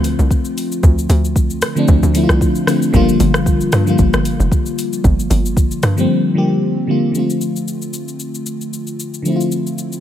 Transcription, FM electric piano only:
0.00 1.75 D3 loud
0.00 1.76 F3 loud
0.00 1.77 A3 loud
0.00 1.78 C4 loud
0.00 2.24 F4 loud
1.75 2.07 D3 medium
1.75 2.08 F3 medium
1.75 2.08 A3 medium
1.75 2.08 C4 medium
1.75 2.09 D4 loud
2.14 2.57 D3 medium
2.14 2.58 F3 medium
2.14 2.58 A3 medium
2.14 2.59 C4 medium
2.14 2.23 E4 medium
2.24 2.62 F4 medium
2.66 2.88 D3 medium
2.66 2.89 F3 medium
2.66 2.89 A3 medium
2.66 2.90 C4 medium
2.66 2.90 F4 medium
2.93 3.67 D3 loud
2.93 3.68 F3 loud
2.93 3.68 G3 loud
2.93 3.69 A#3 loud
2.93 3.69 F4 loud
3.86 4.70 D3 medium
3.86 4.71 F3 medium
3.86 4.71 G3 medium
3.86 4.72 A#3 medium
3.86 4.72 F4 loud
5.97 6.28 D3 medium
5.97 6.29 F3 medium
5.97 6.29 G3 medium
5.97 6.30 A#3 medium
5.97 6.30 C4 loud
6.35 6.78 D3 medium
6.35 6.79 F3 medium
6.35 6.79 G3 medium
6.35 6.80 A#3 medium
6.35 6.80 G4 loud
6.87 7.09 D3 medium
6.87 7.10 F3 medium
6.87 7.10 G3 medium
6.87 7.11 A#3 medium
6.87 7.11 F4 medium
7.12 9.20 D3 medium
7.12 9.21 F3 medium
7.12 9.22 A3 medium
7.17 9.22 C4 medium
7.17 9.23 F4 medium
9.22 10.00 D3 medium
9.22 10.00 F3 medium
9.22 10.00 A3 medium
9.28 10.00 C4 medium
9.28 9.34 E4 medium
9.36 10.00 F4 medium

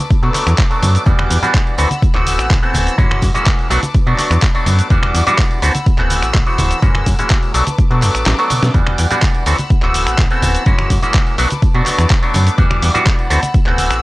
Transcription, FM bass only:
0.23 0.30 B2 medium
0.47 0.54 E2 loud
0.83 0.98 F#2 loud
1.07 1.14 E2 loud
1.19 1.28 E2 soft
1.30 1.38 E2 loud
1.79 1.86 D2 medium
2.03 2.12 D1 soft
2.15 2.38 D1 loud
2.39 2.48 A1 soft
2.50 2.58 A1 medium
2.74 2.90 D1 loud
2.98 3.06 F#2 loud
3.11 3.20 F#2 soft
3.22 3.30 F#2 loud
3.70 3.78 B1 medium
4.07 4.14 B2 medium
4.31 4.38 E2 loud
4.66 4.82 F#2 loud
4.91 4.98 E2 loud
5.03 5.12 E2 soft
5.14 5.22 E2 loud
5.63 5.70 D2 medium
5.87 5.96 D1 soft
5.99 6.22 D1 medium
6.23 6.32 A1 soft
6.34 6.42 A1 medium
6.58 6.74 D1 loud
6.82 6.90 F#2 loud
6.95 7.04 F#2 soft
7.06 7.14 F#2 loud
7.54 7.62 B1 medium
7.91 8.04 B2 medium
8.02 8.10 F#2 medium
8.15 8.24 A1 soft
8.26 8.34 A1 medium
8.51 8.60 B2 soft
8.63 8.70 B2 medium
8.75 8.82 E2 loud
8.87 8.96 E2 soft
8.99 9.06 E2 loud
9.47 9.54 D2 medium
9.70 9.80 D1 soft
9.83 10.06 D1 medium
10.07 10.16 A1 soft
10.18 10.26 A1 medium
10.42 10.58 D1 loud
10.66 10.74 F#2 loud
10.79 10.88 F#2 soft
10.90 10.98 F#2 loud
11.38 11.46 B1 medium
11.75 11.82 B2 medium
11.99 12.06 E2 loud
12.34 12.50 F#2 loud
12.58 12.66 E2 loud
12.71 12.80 E2 soft
12.83 12.90 E2 loud
13.31 13.38 D2 medium
13.54 13.64 D1 soft
13.67 13.90 D1 medium
13.91 14.00 A1 soft

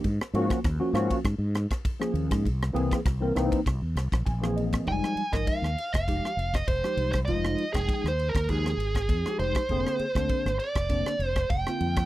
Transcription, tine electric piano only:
0.34 0.57 F3 loud
0.34 0.58 A#3 loud
0.34 0.58 C#4 loud
0.34 0.58 F#4 loud
0.79 0.90 F3 medium
0.79 0.91 A#3 medium
0.79 0.90 C#4 medium
0.79 0.91 F#4 medium
0.94 1.17 F3 loud
0.94 1.17 A#3 medium
0.94 1.17 C#4 loud
0.94 1.18 F#4 loud
1.27 1.33 G#4 soft
2.00 2.44 F3 medium
2.00 2.44 A#3 medium
2.00 2.45 C#4 medium
2.00 2.45 G#4 medium
2.73 2.97 E3 loud
2.73 2.97 A#3 medium
2.73 2.98 C4 medium
2.73 2.98 G#4 loud
3.06 3.13 F#4 soft
3.20 3.31 E3 medium
3.20 3.32 A#3 medium
3.20 3.32 C4 medium
3.20 3.32 A#4 medium
3.35 3.58 E3 loud
3.35 3.59 A#3 medium
3.35 3.59 C4 loud
3.35 3.59 D#4 loud
4.26 4.54 G#5 medium
4.41 4.86 E3 medium
4.41 4.86 A#3 medium
4.41 4.86 C4 medium
4.41 4.87 G#4 medium
4.56 4.84 D#5 medium
4.85 5.20 F3 medium
4.85 5.21 G3 medium
4.85 5.21 G#3 medium
4.85 5.21 D#4 medium
5.32 5.66 F3 medium
5.32 5.66 G#3 soft
5.32 5.67 D#4 medium
5.32 5.67 A#4 medium
5.79 5.85 D#4 soft
5.79 5.86 G#4 soft
6.08 6.30 F3 medium
6.08 6.31 G#3 medium
6.08 6.31 D#4 medium
6.08 6.31 G4 medium
6.38 6.45 D#4 soft
6.38 6.46 G4 soft
6.83 7.17 F3 medium
6.83 7.18 G#3 medium
6.83 7.18 D#4 medium
6.83 7.18 G4 medium
7.28 7.62 F3 medium
7.28 7.63 G#3 medium
7.28 7.63 D#4 medium
7.28 7.63 F4 medium
7.74 8.08 F3 medium
7.74 8.08 G#3 medium
7.74 8.09 D#4 medium
7.74 8.09 G5 medium
8.20 8.27 D#4 soft
8.20 8.28 G4 soft
8.49 8.72 F3 medium
8.49 8.72 G#3 medium
8.49 8.73 D#4 medium
8.49 8.73 G4 medium
9.25 9.59 F3 medium
9.25 9.60 G#3 medium
9.25 9.60 D#4 medium
9.25 9.60 G4 medium
9.70 10.04 D3 medium
9.70 10.05 A#3 medium
9.70 10.05 C4 medium
9.70 10.05 G#4 medium
10.16 10.50 D3 medium
10.16 10.50 A#3 medium
10.16 10.50 C4 medium
10.16 10.51 D4 medium
10.59 10.67 C4 soft
10.59 10.68 G#4 soft
10.89 11.13 D3 medium
10.89 11.13 A#3 medium
10.89 11.13 C4 medium
10.89 11.14 D4 medium
11.21 11.28 C4 soft
11.21 11.29 D4 soft
11.67 12.01 D3 medium
11.67 12.01 A#3 medium
11.67 12.02 C4 medium
11.67 12.02 F4 medium

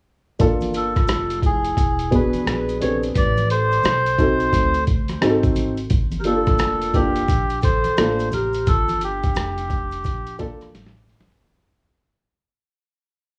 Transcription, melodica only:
0.76 1.40 A4 medium
1.46 2.15 G#4 medium
2.15 2.78 B4 medium
2.82 2.97 C#5 medium
3.17 3.48 D5 loud
3.51 4.84 C5 loud
6.20 6.25 A#4 medium
6.26 6.97 A4 medium
6.95 7.60 G4 loud
7.64 8.29 C5 medium
8.34 8.69 A#4 medium
8.68 9.03 A4 loud
9.04 10.37 G4 medium

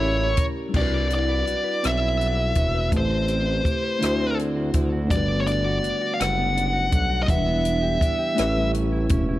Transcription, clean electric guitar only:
0.00 0.42 E3 medium
0.00 0.74 A3 medium
0.00 1.11 G4 medium
0.39 0.82 A#4 medium
0.74 1.83 C4 medium
0.94 2.01 E4 soft
1.11 1.46 F#4 medium
1.29 1.64 B4 medium
1.47 2.18 F#4 medium
1.64 2.35 B4 medium
1.83 2.92 C4 medium
2.02 3.10 E4 soft
2.19 2.54 F#4 soft
2.36 2.73 B4 medium
2.55 2.99 F#4 soft
2.74 3.00 B4 soft
2.92 4.09 A3 medium
3.10 4.08 C4 soft
3.29 3.62 G4 soft
3.47 3.81 B4 medium
3.64 4.08 G4 medium
3.82 4.08 B4 medium
4.01 7.30 D3 medium
4.19 5.17 C4 medium
4.37 4.73 E4 medium
4.56 4.92 F#4 medium
4.75 5.18 E4 medium
4.92 5.65 F#4 medium
5.11 6.19 G3 medium
5.28 6.37 B3 medium
5.48 5.82 D4 medium
5.65 6.00 F#4 medium
5.83 6.54 D4 medium
6.01 6.72 F#4 medium
6.20 7.27 G3 medium
6.38 7.36 B3 medium
6.55 6.89 D4 medium
6.73 7.08 F#4 medium
6.91 7.35 D4 medium
7.09 7.35 F#4 soft
7.27 8.56 E3 medium
7.46 8.45 B3 medium
7.64 8.00 D4 medium
7.82 8.18 G4 medium
8.01 8.45 D4 medium
8.19 8.77 G4 medium
8.38 9.39 A2 medium
8.56 9.39 G3 medium
8.74 9.09 C#4 medium
8.92 9.28 E4 medium
9.10 9.39 C#4 medium
9.29 9.39 E4 medium

